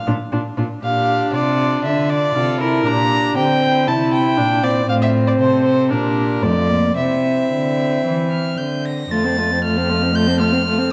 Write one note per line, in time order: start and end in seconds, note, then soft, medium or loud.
0.07 0.16 A#2 medium
0.07 0.15 D4 medium
0.07 0.15 F4 medium
0.32 0.41 A#2 medium
0.32 0.40 D4 medium
0.32 0.40 F4 medium
0.57 0.66 A#2 medium
0.57 0.65 D4 medium
0.57 0.65 F4 medium
0.82 1.30 A#2 medium
0.82 2.36 D4 medium
0.82 1.35 G4 medium
0.82 1.30 F5 medium
1.34 1.84 C3 medium
1.34 1.59 F4 medium
1.34 1.84 D5 medium
1.59 2.37 F4 medium
1.85 2.34 D3 medium
1.85 2.11 E5 medium
2.10 2.60 D5 loud
2.35 2.85 C3 medium
2.35 2.62 F4 medium
2.35 2.87 A4 medium
2.61 2.85 E4 medium
2.61 2.88 A#4 medium
2.85 3.36 A#2 medium
2.85 3.37 D4 medium
2.85 3.36 G4 medium
2.85 3.37 A#5 loud
3.36 3.89 D3 medium
3.36 3.89 C4 medium
3.36 3.45 G4 medium
3.36 3.89 G5 loud
3.63 4.87 E4 medium
3.87 4.41 C3 medium
3.87 4.39 E4 medium
3.87 4.12 A5 medium
4.13 4.65 G5 loud
4.37 4.89 A#2 medium
4.37 4.64 D4 medium
4.63 4.87 C4 medium
4.63 4.88 D5 medium
4.87 5.39 A2 medium
4.87 5.92 C4 medium
4.87 5.39 F4 medium
4.87 4.94 F5 loud
5.02 5.10 E5 medium
5.27 5.32 D5 medium
5.40 5.93 C3 medium
5.40 5.93 A4 medium
5.40 5.64 C5 medium
5.65 5.90 C5 medium
5.90 6.45 A#2 medium
5.90 6.44 D4 medium
5.90 6.45 G4 medium
5.90 6.45 A#4 medium
6.43 6.96 F2 medium
6.43 6.71 A3 medium
6.43 6.97 F4 medium
6.43 6.96 D5 medium
6.70 6.97 A#3 medium
6.97 7.50 C3 medium
6.97 8.88 C4 medium
6.97 8.30 E4 medium
6.97 8.82 E5 medium
7.52 8.04 D3 medium
8.05 8.58 E3 medium
8.31 8.59 F6 medium
8.57 9.11 D3 medium
8.57 8.87 G6 medium
8.85 9.12 A#6 medium
9.11 10.92 F2 medium
9.11 9.26 A3 medium
9.11 9.27 F4 medium
9.11 9.63 A6 loud
9.24 9.38 C4 medium
9.24 9.40 A4 medium
9.37 9.52 A3 medium
9.37 9.53 F4 medium
9.50 9.63 C4 medium
9.50 9.64 A4 medium
9.64 9.79 A3 medium
9.64 9.79 F4 medium
9.64 10.17 F6 loud
9.77 9.91 C4 medium
9.77 9.91 A4 medium
9.89 10.04 A3 medium
9.89 10.04 F4 medium
10.02 10.14 C4 medium
10.02 10.15 A4 medium
10.14 10.28 A3 medium
10.14 10.29 F4 medium
10.14 10.40 G6 loud
10.27 10.41 C4 medium
10.27 10.42 A4 medium
10.40 10.54 A3 medium
10.40 10.55 F4 medium
10.40 10.92 F6 loud
10.52 10.65 C4 medium
10.52 10.66 A4 medium
10.66 10.80 A3 medium
10.66 10.80 F4 medium
10.78 10.92 C4 medium
10.78 10.92 A4 medium